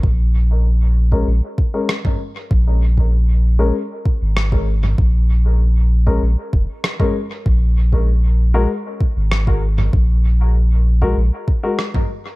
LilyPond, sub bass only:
\new Staff \with { instrumentName = "Sub bass" } { \clef bass \time 4/4 \key bes \minor \tempo 4 = 97 bes,,2 bes,,16 r4. r16 | bes,,2 r8. aes,,4~ aes,,16 | bes,,2 bes,,16 r16 f,,16 r4 r16 | bes,,2 r8. aes,,4~ aes,,16 |
bes,,2 bes,,16 r4. r16 | }